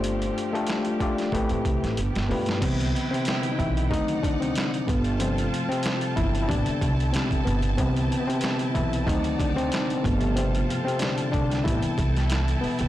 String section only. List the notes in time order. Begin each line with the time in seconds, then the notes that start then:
Already playing: F3 A3 C4 G4
1.33 E3
1.98 F3 A3 B3 G4
2.62 E4 B4 G5
3.91 D#4 D5 F#5
4.88 F4 A4 G5 A5
6.49 E4 A4
7.79 E4 B4 G5
9.07 D#4 D5 F#5
10.04 F4 A4 G5 A5
11.65 E4 A4